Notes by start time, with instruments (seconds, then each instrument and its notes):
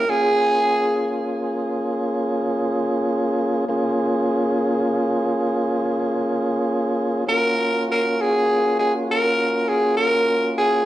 Already playing: tenor saxophone A#4
0.08 tonewheel organ A#3 C#4 F4 G#4, tenor saxophone G#4
3.69 tonewheel organ A#3 C#4 F4 G#4
7.27 tonewheel organ A#3 C#4 F4 F#4, tenor saxophone A#4
7.92 tenor saxophone A#4
8.21 tenor saxophone G#4
8.79 tenor saxophone G#4
9.11 tenor saxophone A#4
9.69 tenor saxophone G#4
9.97 tenor saxophone A#4
10.58 tenor saxophone G#4